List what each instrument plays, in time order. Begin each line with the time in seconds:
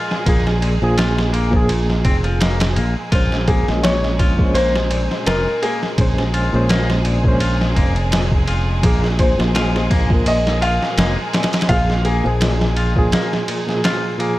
Already playing: reed electric piano A#2 F3 A#4, violin section G#3 G#4, clean electric guitar F4
0.11 snare
0.26 fingered electric bass A#1, reed electric piano A#2 F3 G#4, clean electric guitar A#3, kick, ride
0.47 snare
0.62 clean electric guitar A#2, ride
0.81 fingered electric bass A#1, reed electric piano A#2 F3 G#4
0.97 clean electric guitar F4, snare, ride
1.19 snare
1.33 clean electric guitar A#3, ride
1.51 reed electric piano A#2 F3, kick
1.57 reed electric piano G#4
1.69 clean electric guitar A#2, ride
1.90 snare
2.05 fingered electric bass F1, clean electric guitar C4, kick, ride
2.24 clean electric guitar F3, ride
2.40 clean electric guitar A#3, snare, ride
2.60 snare, ride
2.76 fingered electric bass A#1, clean electric guitar A#3, ride
3.12 fingered electric bass A#1, reed electric piano A#2 G#3 C#4 C5, violin section G#3 G#4, clean electric guitar F4, kick, ride
3.32 snare
3.48 clean electric guitar A#3, felt piano G#4, kick, ride
3.68 fingered electric bass A#1, reed electric piano A#2 G#3 C#4 D#5, snare
3.83 clean electric guitar A#2, felt piano C#5, snare, ride
4.04 snare
4.19 clean electric guitar F4, kick, ride
4.38 reed electric piano A#2 G#3 C#4, kick
4.43 reed electric piano C5
4.54 clean electric guitar A#3, felt piano C5, ride
4.76 snare
4.91 clean electric guitar A#2, ride
5.11 snare
5.26 fingered electric bass F1, clean electric guitar F4, felt piano A#4, snare, ride
5.62 clean electric guitar A#3, felt piano G#4, ride
5.83 snare
5.98 fingered electric bass A#1, clean electric guitar A#2, reed electric piano A#2 G#3 C#4 C5, kick, ride
6.18 snare
6.34 clean electric guitar F4, ride
6.53 fingered electric bass A#1, reed electric piano A#2 G#3 C#4 C5
6.69 clean electric guitar A#3, snare, ride
6.90 snare
7.05 clean electric guitar A#2, ride
7.23 reed electric piano A#2 G#3 C#4, kick
7.28 reed electric piano C5
7.40 clean electric guitar F4, ride
7.61 snare
7.76 fingered electric bass F1, clean electric guitar A#3, kick, ride
7.96 ride
8.12 clean electric guitar A#2, snare, ride
8.32 kick
8.48 clean electric guitar F4, ride
8.83 fingered electric bass A#1, reed electric piano A#2 F3 G#4, clean electric guitar A#3, kick, ride
9.04 snare
9.19 clean electric guitar A#2, felt piano C5, kick, ride
9.38 fingered electric bass A#1, reed electric piano A#2 F3 C5, snare
9.55 clean electric guitar F4, snare, ride
9.76 snare
9.90 clean electric guitar A#3, kick, ride
10.08 reed electric piano A#2 F3, kick
10.14 reed electric piano A#4
10.26 clean electric guitar A#2, felt piano D#5, ride
10.47 snare
10.62 clean electric guitar F4, felt piano F5, ride
10.82 snare
10.98 fingered electric bass F1, clean electric guitar A#3, snare, ride
11.33 clean electric guitar A#2, snare, ride
11.43 snare, ride
11.53 snare, ride
11.61 snare, ride
11.69 fingered electric bass A#1, reed electric piano A#2 F3 G#4, clean electric guitar F4, felt piano F5, kick, ride
11.89 snare
12.05 clean electric guitar A#3, felt piano G#4, ride
12.24 fingered electric bass A#1, reed electric piano A#2 F3 G#4
12.41 clean electric guitar A#2, snare, ride
12.61 snare
12.76 clean electric guitar F4, ride
12.96 reed electric piano A#2 F3 G#4, kick
13.12 clean electric guitar A#3, snare, ride
13.33 snare
13.48 clean electric guitar A#2, ride
13.67 reed electric piano A#2 F3 G#4, snare
13.84 clean electric guitar F4, snare, ride
14.18 reed electric piano A#2 F3 G#4, clean electric guitar A#3, ride